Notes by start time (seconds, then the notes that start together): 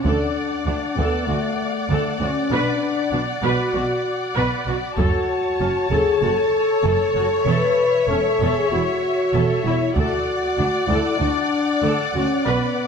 0.04 D2 D4 A4 D5 F#5, taiko
0.66 D2 D4
0.96 D2 B3 A4, taiko
1.26 D2 A3 F#4
1.89 D2 A4
2.20 D2 C#4 F#4
2.50 B1 B2 D4 B4
3.12 B1 B2 D4
3.42 B1 B2 F#4 B4
3.74 B1 B2 F#4
4.36 B1 B2 B4
4.67 B1 B2 F#4
4.97 F#1 F#2 F#4 A4 C#5 A5, taiko
5.60 F#1 F#2 C#4
5.91 F#1 F#2 G#4 A4, taiko
6.22 F#1 F#2 F#4 A4
6.85 F#1 F#2 A4
7.16 F#1 F#2 F#4
7.47 E1 E2 A4 B4 E5
8.09 E1 E2 C#4 A4
8.40 E1 E2 A4
8.56 G#4
8.71 E1 E2 E4 F#4
9.33 E1 E2 A4
9.64 E1 E2 E4
9.95 D2 F#4 A4 D5 F#5, taiko
10.57 D2 D4
10.88 D2 E4 A4
11.19 D2 D4 F#4
11.83 D2 A4
12.14 D2 C#4 F#4
12.47 B1 B2 B3 B4